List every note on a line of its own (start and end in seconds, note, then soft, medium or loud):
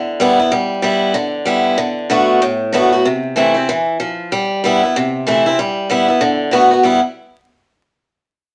0.00 0.49 D3 loud
0.20 0.38 G3 medium
0.20 0.39 B3 loud
0.20 0.38 E4 loud
0.40 0.52 B3 medium
0.40 0.51 E4 medium
0.52 0.81 G3 medium
0.82 1.13 G3 medium
0.82 1.14 B3 medium
0.82 1.14 E4 loud
1.14 1.75 D3 loud
1.45 1.76 G3 medium
1.45 1.77 B3 medium
1.45 1.77 E4 medium
1.78 2.08 D3 medium
2.10 2.40 D3 medium
2.10 2.41 A3 medium
2.10 2.41 B3 loud
2.10 2.41 F#4 medium
2.42 3.02 A2 medium
2.73 2.91 D3 medium
2.73 2.92 A3 medium
2.73 2.92 B3 loud
2.73 2.91 F#4 medium
2.92 3.05 B3 soft
2.92 3.04 F#4 medium
3.05 3.66 C3 medium
3.36 3.54 E3 medium
3.36 3.55 A3 medium
3.36 3.55 C4 medium
3.36 3.53 E4 loud
3.54 3.68 C4 soft
3.54 3.67 E4 medium
3.69 3.99 E3 medium
4.00 4.30 F3 medium
4.32 4.63 G3 medium
4.64 4.82 G3 medium
4.64 4.82 B3 loud
4.64 4.82 E4 loud
4.83 4.95 B3 medium
4.83 4.94 E4 medium
4.96 5.56 C3 medium
5.27 5.45 E3 medium
5.27 5.45 A3 medium
5.27 5.46 C4 medium
5.27 5.45 E4 loud
5.46 5.59 C4 soft
5.46 5.58 E4 medium
5.59 5.88 G3 medium
5.90 6.08 G3 medium
5.90 6.08 B3 loud
5.90 6.07 E4 loud
6.08 6.21 B3 soft
6.08 6.20 E4 medium
6.21 6.50 D3 medium
6.51 6.70 D3 medium
6.51 6.71 A3 medium
6.51 6.71 B3 loud
6.51 6.70 F#4 loud
6.71 6.83 B3 medium
6.71 6.83 F#4 medium
6.83 6.99 G3 medium
6.83 6.99 B3 medium
6.83 7.00 E4 medium